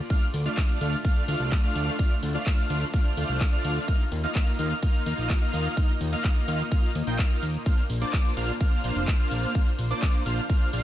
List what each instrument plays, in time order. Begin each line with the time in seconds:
Already playing: analog synth pad F4 D5
0.10 supersaw synth A3 D4 F4 D5 F5, analog synth pad A3 D4, analog synth lead F6, kick, closed hi-hat, ride, shaker
0.22 closed hi-hat
0.34 analog synth bass D2, open hi-hat, shaker
0.46 supersaw synth A3 D4 F4 D5 F5, analog synth lead F6, closed hi-hat, shaker
0.57 kick, clap, closed hi-hat, ride, shaker
0.69 closed hi-hat
0.81 analog synth bass D2, supersaw synth A3 D4 F4 D5 F5, analog synth lead F6, open hi-hat, shaker
0.93 closed hi-hat, shaker
1.05 supersaw synth A3 D4 F4 D5 F5, analog synth lead F6, kick, closed hi-hat, ride, shaker
1.16 closed hi-hat
1.28 analog synth bass D2, supersaw synth A3 D4 F4 D5 F5, analog synth lead F6, open hi-hat, shaker
1.40 analog synth bass C2, closed hi-hat, shaker
1.52 kick, clap, closed hi-hat, ride, shaker
1.64 supersaw synth A3 D4 F4 D5 F5, analog synth lead F6
1.75 analog synth bass D2, open hi-hat, shaker
1.87 closed hi-hat, shaker
1.99 supersaw synth A3 D4 F4 D5 F5, analog synth pad C5, analog synth lead F6, kick, closed hi-hat, ride, shaker
2.11 closed hi-hat
2.23 analog synth bass D2, open hi-hat, shaker
2.35 supersaw synth A3 D4 F4 D5 F5, analog synth lead F6, closed hi-hat, shaker
2.46 kick, clap, closed hi-hat, ride, shaker
2.58 closed hi-hat
2.70 analog synth bass D2, supersaw synth A3 D4 F4 D5 F5, analog synth lead F6, open hi-hat, shaker
2.82 closed hi-hat, shaker
2.94 supersaw synth A3 D4 F4 D5 F5, analog synth lead F6, kick, closed hi-hat, ride, shaker
3.05 closed hi-hat
3.17 analog synth bass D2, supersaw synth A3 D4 F4 D5 F5, analog synth lead F6, open hi-hat, shaker
3.29 analog synth bass C2, closed hi-hat, shaker
3.41 kick, clap, open hi-hat, ride, shaker
3.53 supersaw synth A3 D4 F4 D5 F5, analog synth lead F6
3.64 analog synth bass D2, open hi-hat, shaker
3.76 closed hi-hat, shaker
3.88 supersaw synth A#3 D#4 F4 D#5 F5, analog synth pad A#3 D#4 D#5, analog synth lead F6, kick, closed hi-hat, ride, shaker
4.00 closed hi-hat
4.12 analog synth bass D#2, open hi-hat, shaker
4.23 supersaw synth A#3 D#4 F4 D#5 F5, analog synth lead F6, closed hi-hat, shaker
4.35 kick, clap, closed hi-hat, ride, shaker
4.47 closed hi-hat
4.59 analog synth bass D#2, supersaw synth A#3 D#4 F4 D#5 F5, analog synth lead F6, open hi-hat, shaker
4.71 closed hi-hat, shaker
4.83 supersaw synth A#3 D#4 F4 D#5 F5, analog synth lead F6, kick, closed hi-hat, ride, shaker
4.94 closed hi-hat
5.06 analog synth bass D#2, supersaw synth A#3 D#4 F4 D#5 F5, analog synth lead F6, open hi-hat, shaker
5.18 analog synth bass A#1, closed hi-hat, shaker
5.30 kick, clap, closed hi-hat, ride, shaker
5.42 supersaw synth A#3 D#4 F4 D#5 F5, analog synth lead F6
5.53 analog synth bass D#2, open hi-hat, shaker
5.65 closed hi-hat, shaker
5.77 supersaw synth A#3 D#4 D#5, analog synth lead F6, kick, closed hi-hat, ride, shaker
5.89 closed hi-hat
6.01 analog synth bass D#2, open hi-hat, shaker
6.13 supersaw synth A#3 D#4 F4 D#5 F5, analog synth lead F6, closed hi-hat, shaker
6.24 kick, clap, closed hi-hat, ride, shaker
6.36 closed hi-hat
6.48 analog synth bass D#2, supersaw synth A#3 D#4 F4 D#5 F5, analog synth lead F6, open hi-hat, shaker
6.60 open hi-hat, shaker
6.72 supersaw synth A#3 D#4 F4 D#5 F5, analog synth lead F6, kick, closed hi-hat, ride, shaker
6.83 closed hi-hat
6.95 analog synth bass D#2, open hi-hat, shaker
7.07 analog synth bass A#1, supersaw synth A#3 D#4 F4 D#5 G5, analog synth lead G6, closed hi-hat, shaker
7.19 supersaw synth A#3 F4 F5, analog synth lead F6, kick, clap, open hi-hat, ride, shaker
7.31 closed hi-hat
7.42 analog synth bass D#2, open hi-hat, shaker
7.54 closed hi-hat, shaker
7.66 supersaw synth A#3 D4 F4 C5 F5, analog synth pad D4 F4 C5, analog synth lead F6, kick, closed hi-hat, ride, shaker
7.78 closed hi-hat
7.90 analog synth bass A#1, open hi-hat, shaker
8.01 supersaw synth A#3 D4 F4 C5 D5, analog synth lead D6, closed hi-hat, shaker
8.13 kick, clap, closed hi-hat, ride, shaker
8.25 closed hi-hat
8.37 analog synth bass A#1, supersaw synth A#3 D4 F4 C5 F5, analog synth lead F6, open hi-hat, shaker
8.49 closed hi-hat, shaker
8.61 supersaw synth A#3 D4 F4 C5 F5, analog synth lead F6, kick, closed hi-hat, ride, shaker
8.72 closed hi-hat
8.84 analog synth bass A#1, supersaw synth A#3 D4 F4 C5 F5, analog synth lead F6, open hi-hat, shaker
8.96 analog synth bass F1, closed hi-hat, shaker
9.08 kick, clap, closed hi-hat, ride, shaker
9.20 supersaw synth A#3 D4 F4 C5 F5, analog synth lead F6
9.31 analog synth bass A#1, open hi-hat, shaker
9.43 closed hi-hat, shaker
9.55 supersaw synth A#3 D4 F4 C5 F5, analog synth lead F6, kick, closed hi-hat, ride, shaker
9.67 closed hi-hat
9.79 analog synth bass A#1, open hi-hat, shaker
9.90 supersaw synth A#3 D4 F4 C5 D5, analog synth lead D6, closed hi-hat, shaker
10.02 kick, clap, closed hi-hat, ride, shaker
10.14 closed hi-hat
10.26 analog synth bass A#1, supersaw synth A#3 D4 F4 C5 F5, analog synth lead F6, open hi-hat, shaker
10.38 closed hi-hat, shaker
10.50 supersaw synth A#3 D4 F4 C5 F5, analog synth lead F6, kick, closed hi-hat, ride, shaker
10.61 closed hi-hat
10.73 analog synth bass A#1, supersaw synth A#3 D4 F4 C5 F5, analog synth lead F6, open hi-hat, shaker